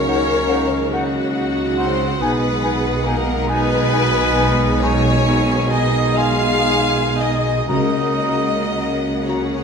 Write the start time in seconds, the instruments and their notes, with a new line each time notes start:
Already playing: double bass section C#2, cello section C#3, trombone section D#3 F#3, french horn section A#3 D#4, cor anglais C#4, viola section A#4, violin section C#5 F5
0.07 clarinet D#4, flute F#5
0.48 clarinet D#4, flute F#5
0.91 clarinet D#4, viola section F#4, violin section F#5, flute F#5
1.36 clarinet D#4, flute F#5
1.77 cor anglais C4, clarinet D#4, violin section C5, flute F#5
2.20 double bass section B1, cello section B2, trombone section D#3 G#3, french horn section G#3 D#4, cor anglais B3, clarinet D#4, viola section G#4, violin section B4, flute G#5
2.63 clarinet D#4, flute G#5
3.04 cor anglais A#3, clarinet D#4, violin section A#4, flute G#5
3.48 cor anglais B3, clarinet D#4, viola section D#4, violin section B4 G#5, flute G#5
3.93 clarinet D#4, viola section F#4, flute G#5
4.36 clarinet D#4, viola section G#4, flute G#5
4.82 cor anglais C#4, clarinet D#4, violin section C#5 G#5, flute G#5
5.26 clarinet D#4, flute G#5
5.70 cor anglais D#4, clarinet D#4, violin section D#5, flute G#5
6.16 clarinet D#4, cor anglais F4, violin section F5 G#5, flute G#5
6.63 clarinet D#4, flute G#5
7.15 clarinet D#4, cor anglais D#4, violin section D#5, flute G#5
7.67 double bass section C#2, trombone section C#3, timpani C#3, cello section C#3, french horn section A#3 F#4, cor anglais D#4, clarinet F#4, viola section A#4, violin section D#5 F#5, flute A#5
8.23 clarinet F#4, flute A#5
8.75 clarinet F#4, flute A#5
9.27 trombone section F#3, cor anglais C#4, clarinet F#4, viola section G#4, violin section C#5, flute A#5